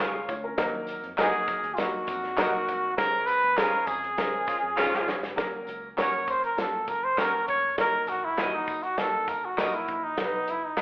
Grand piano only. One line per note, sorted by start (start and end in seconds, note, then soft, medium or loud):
0.14 0.28 G#4 medium
0.14 0.28 F5 medium
0.28 0.43 F4 medium
0.28 0.43 C#5 medium
0.44 0.72 C#4 medium
0.44 0.57 A#4 medium
0.57 0.65 F3 medium
0.57 1.06 A#3 medium
0.57 1.06 D#4 medium
0.57 1.06 A#4 medium
0.64 1.09 F#3 medium
1.18 1.66 F#3 medium
1.18 1.66 A#3 medium
1.18 1.66 D#4 medium
1.18 1.66 A#4 medium
1.78 2.26 F#3 medium
1.78 2.27 A#3 medium
1.78 2.27 D#4 medium
1.78 2.27 A#4 medium
2.38 2.86 F#3 medium
2.38 2.87 A#3 medium
2.38 2.87 D#4 medium
2.38 2.87 A#4 medium
2.97 3.46 F3 medium
2.97 3.46 G#3 medium
2.97 3.46 C#4 medium
2.97 3.46 G#4 medium
3.57 4.06 F3 medium
3.57 4.06 G#3 medium
3.57 4.06 C#4 medium
3.57 4.06 G#4 medium
4.17 4.66 F3 medium
4.17 4.66 G#3 medium
4.17 4.66 C#4 medium
4.17 4.66 A#4 medium
4.77 4.85 D#3 medium
4.77 5.26 G#3 medium
4.77 5.26 C#4 medium
4.77 5.27 G#4 medium
4.84 5.29 F3 medium
5.36 5.85 F#3 medium
5.36 5.86 A#3 medium
5.36 5.86 C#4 medium
5.36 5.86 A#4 medium
5.97 6.46 F#3 medium
5.97 6.46 A#3 medium
5.97 6.46 C#4 medium
5.97 6.46 A#4 medium
6.57 7.06 F#3 medium
6.57 7.06 A#3 medium
6.57 7.06 C#4 medium
6.57 7.06 F4 medium
7.18 7.66 F#3 medium
7.18 7.66 A#3 medium
7.18 7.67 C#4 medium
7.18 7.25 A4 medium
7.25 7.70 A#4 medium
7.78 8.26 F#3 medium
7.78 8.27 A#3 medium
7.78 8.27 D#4 medium
7.78 8.27 A#4 medium
8.38 8.86 F#3 medium
8.38 8.86 A#3 medium
8.38 8.87 D#4 medium
8.38 8.45 F4 medium
8.45 8.90 F#4 medium
8.97 9.46 F#3 medium
8.97 9.46 A#3 medium
8.97 9.46 D#4 medium
8.97 9.47 A#4 medium
9.58 10.06 F#3 medium
9.58 10.07 A#3 medium
9.58 10.07 D#4 medium
9.58 10.07 A#4 medium
10.17 10.66 F#3 medium
10.17 10.66 B3 medium
10.17 10.67 D#4 medium
10.17 10.25 A#4 medium
10.25 10.70 B4 medium
10.77 10.82 F#3 medium
10.77 10.82 B3 medium
10.77 10.82 D#4 medium
10.77 10.82 B4 medium